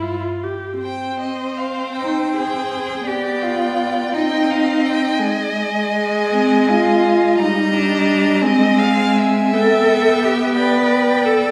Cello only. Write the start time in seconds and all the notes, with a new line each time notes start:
Already playing: G2
1.99 D#4
2.36 G#4
3.07 G4
3.43 F4
4.13 D#4
6.31 C4
6.69 F4
7.40 D#4
7.74 D4
8.43 C4
9.55 A4
10.24 G4
10.58 B4
11.26 A4